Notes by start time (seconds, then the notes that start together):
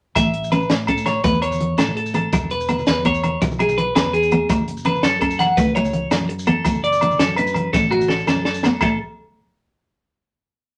0.15 A1 A3 E5, kick, closed hi-hat, muted conga, low conga, low agogo, maracas
0.25 high conga, low conga
0.34 closed hi-hat
0.44 maracas
0.52 C#4 B4, closed hi-hat, high conga, low agogo, maracas
0.60 low conga, maracas
0.70 A2, muted clean electric guitar stroke, snare, closed hi-hat, muted conga, maracas
0.79 low conga
0.87 C#4 A4, kick, closed hi-hat, low agogo, maracas
0.97 maracas
1.06 C#5, snare, closed hi-hat, high conga, low conga, low agogo
1.24 E2 A3 B4, kick, closed hi-hat, muted conga, maracas
1.33 high conga, maracas
1.42 C#5, closed hi-hat, low agogo
1.51 low conga, maracas
1.60 closed hi-hat, high conga
1.78 A2 C#4 A4, snare, closed hi-hat, muted conga, low agogo, maracas
1.88 high conga, low conga
1.97 A4, closed hi-hat
2.06 maracas
2.14 B3 A4, closed hi-hat, high conga, low agogo
2.25 low conga
2.32 E1 G#3, kick, closed hi-hat, muted conga, low conga, low agogo, maracas
2.44 high conga
2.50 B4, closed hi-hat
2.60 maracas
2.69 B3, closed hi-hat, high conga, low agogo, maracas
2.78 low conga, maracas
2.87 E2 B4, snare, closed hi-hat, muted conga, maracas
2.97 high conga, low conga
3.05 B3 C#5, kick, closed hi-hat, low conga, low agogo, maracas
3.14 maracas
3.24 closed hi-hat, high conga, low conga, low agogo
3.42 B1 G#3, muted clean electric guitar stroke, kick, closed hi-hat, muted conga, maracas
3.51 high conga, maracas
3.59 G#3 G#4, closed hi-hat, low agogo
3.69 low conga, maracas
3.78 B4, closed hi-hat, high conga
3.95 E2 C#4 B4, snare, closed hi-hat, muted conga, low agogo, maracas
4.05 high conga, low conga
4.13 G#4, closed hi-hat
4.23 maracas
4.31 B3, closed hi-hat, high conga, low agogo
4.49 F#1 A3, muted clean electric guitar stroke, kick, closed hi-hat, muted conga, low conga, low agogo, maracas
4.60 high conga, low conga
4.68 closed hi-hat
4.77 maracas
4.85 C#4 B4, closed hi-hat, high conga, low agogo, maracas
4.95 low conga, maracas
5.03 F#2 A4, snare, closed hi-hat, muted conga, maracas
5.13 low conga
5.21 C#4 A4, kick, closed hi-hat, low conga, low agogo, maracas
5.30 maracas
5.39 F#5, snare, closed hi-hat, high conga, low conga, low agogo
5.57 C#2 A3 B4, kick, closed hi-hat, muted conga, maracas
5.67 high conga, maracas
5.75 A3 C#5, closed hi-hat, low agogo
5.85 low conga, maracas
5.93 closed hi-hat, high conga
6.11 F#2 C#4, muted clean electric guitar stroke, snare, closed hi-hat, muted conga, low agogo, maracas
6.21 high conga, low conga
6.29 muted clean electric guitar stroke, closed hi-hat
6.39 maracas
6.47 B3 A4, closed hi-hat, high conga, low agogo
6.56 low conga
6.65 F#1 A3, kick, closed hi-hat, muted conga, low conga, low agogo, maracas
6.74 high conga, low conga, maracas
6.84 D5, closed hi-hat
6.92 low conga, maracas
7.01 D4, closed hi-hat, high conga, low agogo
7.11 low conga, maracas
7.19 F#2 A4, snare, closed hi-hat, muted conga, low conga, maracas
7.28 high conga, low conga
7.36 D4 B4, closed hi-hat, low conga, low agogo
7.47 maracas
7.54 closed hi-hat, high conga, low conga, low agogo
7.73 A1 A3 A4, kick, snare, muted conga, maracas
7.82 high conga
7.91 A3 F#4, low conga, low agogo
8.00 low conga, maracas
8.08 A4, snare, high conga
8.19 maracas
8.27 F#2 C#4 A4, snare, muted conga, low agogo, maracas
8.36 high conga, low conga
8.45 A4, snare, low conga
8.54 maracas
8.63 B3, snare, high conga, low agogo
8.81 A1 A3 A4, kick, china, muted conga, low agogo, maracas